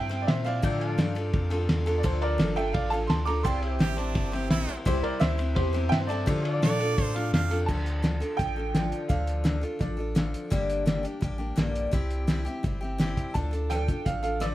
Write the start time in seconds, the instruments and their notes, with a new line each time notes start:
Already playing: sub bass G2, steel-string acoustic guitar C4 E4, pedal steel guitar G4 C5, upright piano E5 G5
0.09 steel-string acoustic guitar C4 E4 C5, ride
0.22 upright piano D5
0.27 sub bass A#2, upright piano C5 E5, snare, ride
0.44 steel-string acoustic guitar C4 E4 C5, upright piano D5 F5, ride
0.62 sub bass A2, steel-string acoustic guitar D3 F3 D4 F4 A4, pedal steel guitar D5 E5 G5, kick, ride
0.81 ride
0.86 pedal steel guitar F5 A5
0.98 sub bass G2, steel-string acoustic guitar F3 D4 F4 A4, snare, ride
1.15 steel-string acoustic guitar D4 F4 A4, ride
1.33 sub bass F2, kick, ride
1.50 steel-string acoustic guitar D4 F4 A4, ride
1.69 sub bass E2, snare, ride
1.86 steel-string acoustic guitar D4 F4 A4, ride
1.98 upright piano D5
2.03 sub bass D2, steel-string acoustic guitar D3 F3 D4 F4 A4, upright piano A4 C5, kick, ride
2.21 upright piano A#4 D5, ride
2.38 sub bass G1, steel-string acoustic guitar F3 D4 F4 A4, snare, ride
2.56 steel-string acoustic guitar D4 F4 A4, upright piano E5 G5, ride
2.73 sub bass A1, upright piano D5 F5, kick, ride
2.90 steel-string acoustic guitar D4 F4 A4, upright piano F5 A5, ride
3.07 sub bass D2, upright piano A5 C6, snare, ride
3.25 steel-string acoustic guitar F4 A4, upright piano A#5 D6, ride
3.30 steel-string acoustic guitar D4
3.43 sub bass C2, steel-string acoustic guitar C3 G3 C4 E4 C5, pedal steel guitar A4 D5 F5, upright piano G5 C6, kick, ride
3.62 pedal steel guitar E5, ride
3.69 pedal steel guitar G4 C5
3.79 sub bass A1, steel-string acoustic guitar G3 C4 E4 C5, harmonica G4, snare, ride
3.97 steel-string acoustic guitar C4 E4 C5, harmonica D4, ride
4.15 sub bass G1, kick, ride
4.32 steel-string acoustic guitar C4 E4 C5, harmonica G4, ride
4.50 sub bass A#1, harmonica E4, snare, ride
4.67 sub bass A#1, steel-string acoustic guitar C4 E4 C5, ride
4.85 sub bass C2, steel-string acoustic guitar C3 G3 C4 E4 C5, upright piano G4 C5, kick, ride
5.03 sub bass C2, upright piano A#4 D5, ride
5.20 sub bass D2, steel-string acoustic guitar G3 C4 E4 C5, upright piano C5 E5, snare, ride
5.38 steel-string acoustic guitar C4 E4 C5, ride
5.55 sub bass E2, upright piano G4 C5, kick, ride
5.73 steel-string acoustic guitar C4 E4 C5, ride
5.89 sub bass G2, upright piano E5 G5, snare, ride
6.00 upright piano C5
6.07 steel-string acoustic guitar E4 C5, upright piano A4 D5, ride
6.12 steel-string acoustic guitar C4
6.26 steel-string acoustic guitar D3 F3 D4 F4 A4, sub bass D3, pedal steel guitar G4 C5 E5, kick, ride
6.45 ride
6.49 pedal steel guitar A4 F5
6.53 pedal steel guitar D5
6.62 sub bass A#2, steel-string acoustic guitar F3 D4 F4 A4, harmonica D5, snare, ride
6.80 steel-string acoustic guitar D4 F4 A4, ride
6.98 sub bass A2, kick, ride
7.03 harmonica C5
7.14 steel-string acoustic guitar D4 F4 A4, harmonica F5, ride
7.33 sub bass F2, harmonica F5, snare, ride
7.50 steel-string acoustic guitar D4 F4 A4, ride
7.66 sub bass D2, steel-string acoustic guitar D3 F3 D4, upright piano A5, kick, crash
7.70 steel-string acoustic guitar F4 A4
7.86 closed hi-hat
8.02 steel-string acoustic guitar D3 F3 D4 F4 A4, snare, closed hi-hat
8.20 steel-string acoustic guitar D4 F4 A4, closed hi-hat
8.37 sub bass A1, steel-string acoustic guitar F3 D4 F4, upright piano G5, kick, closed hi-hat
8.42 steel-string acoustic guitar A4
8.56 steel-string acoustic guitar D4 F4 A4
8.75 steel-string acoustic guitar D3 F3 D4 F4 A4, snare, closed hi-hat
8.92 closed hi-hat
9.08 sub bass D2, steel-string acoustic guitar D3 F3 D4 F4 A4, upright piano F5, kick, closed hi-hat
9.27 closed hi-hat
9.44 steel-string acoustic guitar D3 F3 D4 F4 A4, snare, closed hi-hat
9.61 steel-string acoustic guitar D4 F4 A4, closed hi-hat
9.79 sub bass A1, steel-string acoustic guitar F3 D4 F4 A4, upright piano D5, kick, closed hi-hat
9.97 steel-string acoustic guitar D4 F4 A4
10.15 steel-string acoustic guitar D3 F3 D4 F4 A4, snare, closed hi-hat
10.34 closed hi-hat
10.50 sub bass G1, steel-string acoustic guitar G2 D3 G3 A#3 D4 G4, kick, closed hi-hat
10.70 closed hi-hat
10.86 steel-string acoustic guitar G2 D3 G3 A#3 D4 G4, snare, closed hi-hat
11.03 steel-string acoustic guitar G3 A#3 D4 G4, closed hi-hat
11.21 sub bass A1, steel-string acoustic guitar G3 A#3 D4 G4, kick, closed hi-hat
11.38 steel-string acoustic guitar G3 A#3 D4 G4
11.56 sub bass A#1, steel-string acoustic guitar G2 D3 G3 A#3 D4 G4, snare, closed hi-hat
11.75 closed hi-hat
11.91 sub bass C2, steel-string acoustic guitar C3 G3 C4 E4 G4, kick, closed hi-hat
12.10 closed hi-hat
12.27 steel-string acoustic guitar C3 G3 C4 E4 G4, snare, closed hi-hat
12.45 steel-string acoustic guitar C4 E4 G4, closed hi-hat
12.63 sub bass G1, steel-string acoustic guitar G3 C4 E4 G4, kick, closed hi-hat
12.81 steel-string acoustic guitar C4 E4 G4
12.98 steel-string acoustic guitar C3 G3 C4 E4 G4, snare, closed hi-hat
13.17 kick, closed hi-hat
13.34 sub bass D2, steel-string acoustic guitar D3 F3 D4 F4 A4, upright piano A5, kick, closed hi-hat
13.51 steel-string acoustic guitar D4 F4 A4, closed hi-hat
13.70 steel-string acoustic guitar D3 F3 D4 F4 A4, upright piano G5, cross-stick, closed hi-hat
13.88 steel-string acoustic guitar D4 F4 A4, kick, closed hi-hat
14.05 sub bass A1, steel-string acoustic guitar F3 D4 F4 A4, upright piano F5, kick, closed hi-hat
14.23 steel-string acoustic guitar D4 F4 A4, upright piano F5, closed hi-hat
14.40 steel-string acoustic guitar D3 F3 D4 F4 A4, upright piano D5, cross-stick, closed hi-hat